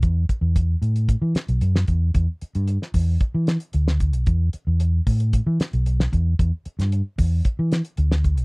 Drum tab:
HH |x-x-x-xxx-xxx-x-|x-xxx-o-x-xxx-xx|x-x-x-oxx-xxx-x-|x-xxx-o-x-xxx-xx|
SD |----------o--o--|-----o----o--o--|----------o--o--|---o------o--o--|
BD |o-o-o---o-----o-|o-----o-o-----o-|o-----o-o-----o-|o-----o-o-----o-|